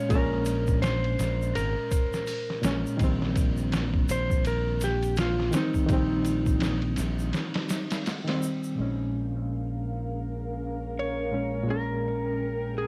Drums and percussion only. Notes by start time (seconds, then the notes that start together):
0.10 kick, ride, shaker
0.45 ride, shaker
0.67 kick, shaker
0.83 snare, ride, shaker
1.04 ride
1.19 snare, ride, shaker
1.42 shaker
1.55 ride, shaker
1.91 kick, ride, shaker
2.13 snare, shaker
2.27 open hi-hat, shaker
2.50 snare
2.63 snare, ride, shaker
2.86 shaker
2.99 kick, ride, shaker
3.22 snare
3.36 kick, ride, shaker
3.57 shaker
3.72 snare, ride, shaker
3.94 kick
4.09 ride, shaker
4.30 kick, shaker
4.45 ride, shaker
4.81 snare, ride, shaker
5.03 ride, shaker
5.16 snare, ride, shaker
5.40 snare
5.53 snare, ride, shaker
5.74 kick, shaker
5.89 kick, ride, shaker
6.25 ride, shaker
6.46 kick, shaker
6.60 snare, ride, shaker
6.82 ride
6.96 snare, ride, shaker
7.19 shaker
7.33 snare, ride, shaker
7.54 snare, ride
7.69 snare, ride, shaker
7.90 snare, ride, shaker
8.06 snare, ride, shaker
8.28 snare, ride
8.43 shaker
8.64 shaker